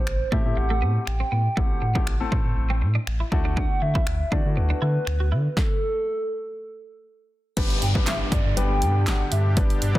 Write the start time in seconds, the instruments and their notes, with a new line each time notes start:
Already playing: soft synth lead C5
0.07 sub bass A1, finger snap
0.32 sub bass A2, grand piano A3 C4 E4 G4, clean electric guitar A3, soft synth lead E5, kick
0.45 sub bass A2, grand piano A3 C4 E4 G4
0.57 sub bass A1, soft synth lead F#5, muted clean electric guitar stroke
0.70 clean electric guitar A3
0.82 sub bass A2, clean electric guitar B3
1.07 sub bass A1, soft synth lead G5, finger snap, muted clean electric guitar stroke
1.20 clean electric guitar C4
1.32 sub bass A2, clean electric guitar B3
1.57 sub bass A1, grand piano A3 C4 E4 G4, clean electric guitar A3, soft synth lead F#5, kick
1.82 sub bass A2, muted clean electric guitar stroke
1.95 grand piano A3 C4 E4 G4, clean electric guitar D4, kick
2.07 sub bass A1, finger snap
2.20 grand piano A3 C4 E4 A4
2.32 sub bass A2, clean electric guitar C4, kick
2.45 sub bass A2
2.57 sub bass A1
2.70 clean electric guitar C4
2.82 sub bass A2, muted clean electric guitar stroke
2.95 clean electric guitar D4
3.07 sub bass A1, finger snap
3.20 clean electric guitar E4
3.32 sub bass D2, grand piano A3 D4 E4 F#4, muted clean electric guitar stroke, kick
3.45 clean electric guitar D4
3.57 clean electric guitar D4, soft synth lead F#5, kick
3.82 sub bass D3, soft synth lead E5, muted clean electric guitar stroke
3.95 clean electric guitar E4, kick
4.07 sub bass D2, finger snap
4.32 sub bass D3, grand piano A3 D4 E4 F#4, clean electric guitar D4, soft synth lead D5, kick
4.45 sub bass D3, grand piano A3 D4 E4 F#4
4.57 sub bass D2, soft synth lead B4, muted clean electric guitar stroke
4.70 clean electric guitar D4
4.82 sub bass D3, clean electric guitar E4
5.07 sub bass D2, finger snap, muted clean electric guitar stroke
5.20 clean electric guitar F#4
5.32 sub bass D3, clean electric guitar E4
5.57 soft synth lead A4, kick, snare
7.57 sub bass G1, analog synth pad B2 D3 G3 D4 G4, grand piano G3 B3 D4 G4 B4, kick, closed hi-hat, crash, downlifter
7.70 closed hi-hat
7.82 sub bass G2, soft synth lead G5, closed hi-hat
7.95 grand piano G3 B3 D4 G4 B4, kick
8.07 sub bass G1, soft synth lead E5, snare, clap, closed hi-hat
8.32 sub bass G2, soft synth lead D5, kick, closed hi-hat
8.45 sub bass G2
8.57 sub bass G1, grand piano G3 B3 D4 G4 B4, soft synth lead G5, closed hi-hat
8.82 sub bass G2, closed hi-hat
9.07 sub bass G1, soft synth lead F#5, snare, clap, closed hi-hat
9.32 sub bass G2, soft synth lead E5, closed hi-hat
9.57 sub bass G1, grand piano G3 B3 D4 G4 B4, soft synth lead D5, kick, closed hi-hat
9.70 closed hi-hat
9.82 sub bass G2, closed hi-hat
9.95 grand piano G3 B3 D4 G4 B4, kick